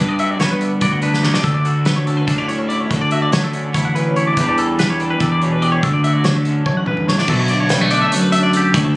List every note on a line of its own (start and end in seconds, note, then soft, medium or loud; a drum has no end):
0.00 0.35 G2 medium
0.00 1.42 G2 medium
0.00 0.40 G3 medium
0.00 0.20 D4 soft
0.08 0.19 D5 medium
0.19 0.82 F#4 soft
0.19 0.31 E5 medium
0.19 closed hi-hat medium
0.31 0.40 D5 medium
0.39 0.77 G3 medium
0.39 1.42 B3 medium
0.39 0.50 C#5 medium
0.39 snare medium
0.39 closed hi-hat medium
0.51 0.72 B4 medium
0.61 1.02 D3 soft
0.61 1.02 D4 soft
0.61 closed hi-hat medium
0.81 1.38 D2 medium
0.81 1.23 F#4 soft
0.81 0.92 D5 medium
0.81 kick loud
0.81 closed hi-hat medium
0.92 1.02 F#5 medium
1.02 1.42 D3 medium
1.02 2.08 D4 medium
1.02 1.24 B4 medium
1.02 closed hi-hat medium
1.14 snare soft
1.23 1.42 A4 soft
1.23 1.34 C#5 medium
1.23 snare medium
1.34 1.44 D5 medium
1.34 snare medium
1.43 2.90 D2 medium
1.43 2.19 D2 medium
1.43 1.55 A4 medium
1.43 kick medium
1.43 closed hi-hat medium
1.54 1.65 D5 medium
1.65 2.27 F#4 soft
1.65 1.86 A4 medium
1.65 closed hi-hat soft
1.85 2.88 A3 medium
1.85 1.96 B4 medium
1.85 snare medium
1.85 closed hi-hat medium
1.96 2.07 C#5 medium
2.07 3.52 D3 soft
2.07 2.49 C#4 soft
2.07 2.17 A4 medium
2.07 closed hi-hat soft
2.17 2.27 B4 medium
2.27 2.84 D2 medium
2.27 2.38 D4 medium
2.27 2.38 A4 medium
2.27 kick medium
2.27 closed hi-hat medium
2.38 2.70 E4 soft
2.38 2.48 D5 medium
2.48 2.91 A2 medium
2.48 2.89 C#4 medium
2.48 2.59 C#5 medium
2.48 closed hi-hat soft
2.59 2.68 A4 medium
2.69 2.89 E4 soft
2.69 2.80 D5 medium
2.69 closed hi-hat soft
2.80 2.91 C#5 medium
2.91 4.37 D2 medium
2.91 3.28 D3 medium
2.91 3.01 A4 medium
2.91 kick medium
2.91 closed hi-hat medium
3.01 3.12 D5 medium
3.11 3.75 F#4 medium
3.11 3.22 E5 medium
3.11 closed hi-hat medium
3.22 3.32 D5 medium
3.32 3.70 D3 medium
3.32 4.35 A3 medium
3.32 3.43 C#5 medium
3.32 snare loud
3.32 closed hi-hat medium
3.44 3.64 A4 medium
3.53 4.37 D3 medium
3.53 3.95 C#4 soft
3.53 closed hi-hat soft
3.74 4.30 A1 medium
3.74 4.16 E4 medium
3.74 3.85 C#5 medium
3.74 kick medium
3.74 closed hi-hat medium
3.85 3.95 F#5 medium
3.95 4.37 A2 medium
3.95 4.35 C#4 medium
3.95 4.16 B4 medium
3.95 closed hi-hat medium
4.16 4.35 E4 soft
4.16 4.27 C#5 medium
4.16 closed hi-hat soft
4.27 4.38 D5 medium
4.37 5.11 E2 medium
4.37 5.81 E2 medium
4.37 4.99 E3 medium
4.37 4.78 G3 medium
4.37 5.00 D4 medium
4.37 4.59 G4 medium
4.37 4.48 B4 medium
4.37 kick medium
4.37 closed hi-hat medium
4.49 4.58 D5 medium
4.58 4.79 A4 medium
4.58 5.21 A4 soft
4.58 closed hi-hat medium
4.79 5.83 G3 medium
4.79 4.89 B4 medium
4.79 snare medium
4.79 closed hi-hat medium
4.90 5.00 C#5 medium
5.00 5.81 E3 medium
5.00 5.44 D4 soft
5.00 5.10 A4 medium
5.00 closed hi-hat soft
5.10 5.20 B4 medium
5.20 5.76 E2 medium
5.20 5.63 G4 medium
5.20 5.31 A4 medium
5.20 kick loud
5.20 closed hi-hat medium
5.32 5.42 D5 medium
5.42 5.81 B2 medium
5.42 6.49 D4 medium
5.42 5.52 C#5 medium
5.42 closed hi-hat soft
5.52 5.62 B4 medium
5.62 5.81 G4 soft
5.62 5.72 D5 medium
5.62 closed hi-hat soft
5.72 5.83 C#5 medium
5.83 6.20 D2 medium
5.83 6.67 D2 medium
5.83 5.93 A4 medium
5.83 kick medium
5.83 closed hi-hat medium
5.93 6.03 D5 medium
6.04 7.28 F#4 soft
6.04 6.13 E5 medium
6.04 closed hi-hat medium
6.13 6.24 D5 medium
6.24 6.61 D3 medium
6.24 7.27 A3 medium
6.24 6.35 C#5 medium
6.24 snare medium
6.24 closed hi-hat medium
6.35 6.56 A4 medium
6.45 7.49 D3 soft
6.45 closed hi-hat medium
6.49 7.28 C#4 soft
6.66 7.22 A1 medium
6.66 6.87 F#2 medium
6.66 6.77 C#5 medium
6.66 kick medium
6.77 6.87 F#5 medium
6.86 7.08 G2 medium
6.86 7.08 B4 medium
6.86 mid tom medium
6.97 mid tom medium
7.08 7.28 A2 soft
7.08 7.19 C#5 medium
7.08 snare medium
7.18 7.29 D5 medium
7.18 snare medium
7.28 8.03 B1 medium
7.28 7.49 B2 medium
7.28 7.39 A4 medium
7.28 kick loud
7.28 crash loud
7.39 7.49 C#5 medium
7.48 8.95 D3 medium
7.48 7.60 D5 medium
7.48 closed hi-hat medium
7.60 7.81 C#5 medium
7.69 7.81 G3 medium
7.69 snare loud
7.69 closed hi-hat medium
7.81 8.74 A3 soft
7.81 7.90 B4 medium
7.91 8.33 D4 medium
7.91 8.01 D5 medium
7.91 closed hi-hat medium
8.02 8.12 E5 medium
8.12 8.72 F#2 medium
8.12 8.21 C#5 medium
8.12 closed hi-hat medium
8.21 8.32 B4 medium
8.32 8.73 D4 medium
8.32 8.43 E5 medium
8.32 closed hi-hat medium
8.43 8.53 D5 medium
8.53 8.73 G4 medium
8.53 8.75 A4 medium
8.53 closed hi-hat medium
8.74 8.96 D2 medium
8.74 8.84 C#5 medium
8.74 kick loud
8.74 closed hi-hat medium
8.84 8.95 A4 medium